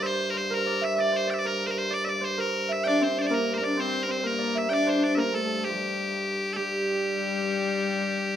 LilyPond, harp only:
\new Staff \with { instrumentName = "Harp" } { \time 6/8 \key g \dorian \tempo 4. = 129 c''4 c''8 bes'8 d''8 e''8 | d''8 c''8 d''8 bes'8. bes'8. | d''8 d''8 c''8 bes'4 e''8 | d''8 c''8. d''16 bes'8. bes'16 d''8 |
c''4 c''16. c''32 bes'8 d''8 e''8 | d''8 c''4 bes'8 a'8 a'8 | g'2 r4 | g'2.~ |
g'2. | }